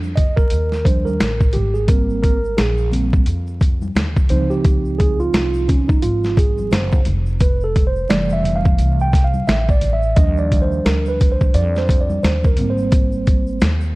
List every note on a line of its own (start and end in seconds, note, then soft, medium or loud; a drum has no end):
0.00 0.48 F2 medium
0.00 0.12 F3 medium
0.00 0.12 G3 medium
0.00 0.12 D4 medium
0.00 shaker medium
0.16 0.35 D#5 medium
0.16 kick medium
0.16 closed hi-hat medium
0.16 low conga medium
0.16 shaker soft
0.36 0.87 A#4 loud
0.36 kick medium
0.36 shaker soft
0.50 1.17 D#2 medium
0.50 closed hi-hat medium
0.50 shaker medium
0.72 snare soft
0.72 shaker soft
0.84 1.16 F3 soft
0.84 1.16 G3 soft
0.84 1.16 D4 medium
0.84 1.06 C5 medium
0.84 kick medium
0.84 closed hi-hat medium
0.84 shaker soft
1.05 1.55 A#4 medium
1.05 high conga medium
1.05 shaker soft
1.20 1.53 A1 medium
1.20 snare loud
1.20 closed hi-hat medium
1.20 low conga medium
1.20 shaker medium
1.40 kick medium
1.40 shaker soft
1.53 2.54 G#1 medium
1.53 1.75 G4 medium
1.53 closed hi-hat medium
1.53 high conga soft
1.53 low conga medium
1.53 shaker soft
1.74 1.89 G#4 medium
1.74 shaker soft
1.87 2.36 G3 medium
1.87 2.37 A#3 soft
1.87 2.37 C4 medium
1.87 2.21 A#4 medium
1.87 kick loud
1.87 closed hi-hat medium
1.87 shaker medium
2.09 shaker soft
2.23 2.59 A#4 medium
2.23 kick medium
2.23 closed hi-hat medium
2.23 high conga soft
2.23 shaker soft
2.45 shaker soft
2.57 3.23 A#1 medium
2.57 2.90 G#4 medium
2.57 snare loud
2.57 closed hi-hat medium
2.57 shaker medium
2.78 shaker soft
2.92 3.23 G3 soft
2.92 3.23 A#3 soft
2.92 3.23 C4 medium
2.92 closed hi-hat medium
2.92 low conga medium
2.92 shaker soft
3.13 kick medium
3.13 shaker soft
3.26 3.92 F2 medium
3.26 closed hi-hat medium
3.26 shaker medium
3.47 shaker soft
3.61 kick medium
3.61 closed hi-hat medium
3.61 shaker soft
3.82 high conga medium
3.82 shaker soft
3.95 4.28 D#2 medium
3.95 snare loud
3.95 closed hi-hat medium
3.95 low conga medium
3.95 shaker medium
4.17 kick loud
4.17 shaker medium
4.29 5.30 C#2 loud
4.29 7.02 F3 medium
4.29 7.02 C4 soft
4.29 5.87 D#4 medium
4.29 4.51 C5 medium
4.29 closed hi-hat medium
4.29 high conga soft
4.29 low conga medium
4.29 shaker soft
4.50 5.00 G4 medium
4.50 shaker soft
4.64 kick loud
4.64 closed hi-hat medium
4.64 shaker medium
4.85 shaker soft
4.98 5.20 G#4 loud
4.98 kick medium
4.98 closed hi-hat medium
4.98 high conga soft
4.98 shaker soft
5.20 5.70 F4 medium
5.20 shaker soft
5.33 5.99 C2 medium
5.33 snare loud
5.33 closed hi-hat medium
5.33 shaker medium
5.54 shaker medium
5.68 5.89 C#4 medium
5.68 kick medium
5.68 closed hi-hat medium
5.68 low conga medium
5.68 shaker soft
5.88 6.03 D#4 medium
5.88 kick medium
5.88 shaker soft
6.02 6.68 G#1 loud
6.02 6.38 F4 loud
6.02 closed hi-hat medium
6.02 shaker medium
6.24 snare soft
6.24 shaker soft
6.37 6.73 G#4 medium
6.37 kick medium
6.37 closed hi-hat medium
6.37 shaker soft
6.58 high conga medium
6.58 shaker soft
6.71 7.04 F#1 medium
6.71 7.04 C5 medium
6.71 snare loud
6.71 closed hi-hat medium
6.71 low conga medium
6.71 shaker medium
6.92 kick medium
6.92 shaker medium
7.05 8.06 F1 loud
7.05 closed hi-hat medium
7.05 high conga soft
7.05 low conga medium
7.05 shaker soft
7.26 shaker soft
7.40 7.64 B4 medium
7.40 kick loud
7.40 closed hi-hat medium
7.40 shaker medium
7.61 7.85 A4 medium
7.61 shaker soft
7.75 kick medium
7.75 closed hi-hat medium
7.75 high conga soft
7.75 shaker soft
7.87 8.08 C5 medium
7.96 shaker soft
8.09 8.75 F1 medium
8.09 9.10 E3 medium
8.09 9.09 G3 medium
8.09 9.09 A3 medium
8.09 8.31 D5 loud
8.09 snare loud
8.09 closed hi-hat medium
8.09 shaker medium
8.29 8.56 E5 medium
8.29 shaker medium
8.44 closed hi-hat medium
8.44 low conga medium
8.44 shaker soft
8.56 8.98 F5 medium
8.65 kick loud
8.65 shaker soft
8.78 9.44 C2 medium
8.78 closed hi-hat medium
8.78 shaker medium
8.99 9.25 G5 loud
8.99 shaker soft
9.13 kick medium
9.13 snare soft
9.13 closed hi-hat medium
9.13 shaker soft
9.24 9.46 F5 medium
9.34 high conga medium
9.34 shaker soft
9.47 10.13 A1 medium
9.47 9.69 E5 medium
9.47 snare loud
9.47 closed hi-hat medium
9.47 low conga medium
9.47 shaker medium
9.68 9.94 D5 medium
9.68 kick medium
9.68 shaker medium
9.81 closed hi-hat medium
9.81 high conga soft
9.81 low conga medium
9.81 shaker soft
9.93 10.17 E5 medium
10.02 shaker soft
10.16 10.82 D#2 loud
10.16 12.54 F3 medium
10.16 12.54 G3 medium
10.16 12.54 D4 medium
10.16 10.38 D#5 loud
10.16 kick loud
10.16 closed hi-hat medium
10.16 shaker medium
10.37 10.63 D5 medium
10.37 shaker soft
10.51 kick medium
10.51 closed hi-hat medium
10.51 high conga soft
10.51 shaker soft
10.62 10.86 C5 medium
10.72 shaker soft
10.85 11.51 D2 medium
10.85 11.09 A#4 medium
10.85 snare loud
10.85 closed hi-hat loud
10.85 shaker medium
11.06 11.32 B4 medium
11.06 shaker medium
11.20 kick medium
11.20 closed hi-hat medium
11.20 low conga medium
11.20 shaker soft
11.32 11.55 C5 medium
11.41 kick medium
11.41 shaker soft
11.54 12.20 F2 loud
11.54 11.76 D5 loud
11.54 closed hi-hat medium
11.54 shaker medium
11.75 12.01 C5 medium
11.75 snare soft
11.75 shaker soft
11.88 kick medium
11.88 closed hi-hat medium
11.88 shaker soft
12.00 12.24 D5 medium
12.10 high conga medium
12.10 shaker soft
12.23 12.56 D#2 medium
12.23 12.47 C5 medium
12.23 snare loud
12.23 closed hi-hat medium
12.23 low conga medium
12.23 shaker medium
12.44 12.70 A#4 medium
12.44 kick medium
12.44 shaker medium
12.57 13.57 G#1 loud
12.57 13.57 G3 medium
12.57 13.58 A#3 medium
12.57 13.58 C4 medium
12.57 closed hi-hat medium
12.57 high conga soft
12.57 low conga medium
12.57 shaker soft
12.70 13.69 C5 medium
12.78 shaker soft
12.92 kick loud
12.92 closed hi-hat medium
12.92 shaker medium
13.12 shaker soft
13.26 kick medium
13.26 closed hi-hat medium
13.26 high conga soft
13.26 shaker soft
13.47 shaker soft
13.61 13.95 D#2 medium
13.61 snare loud
13.61 closed hi-hat medium
13.61 shaker medium
13.81 shaker soft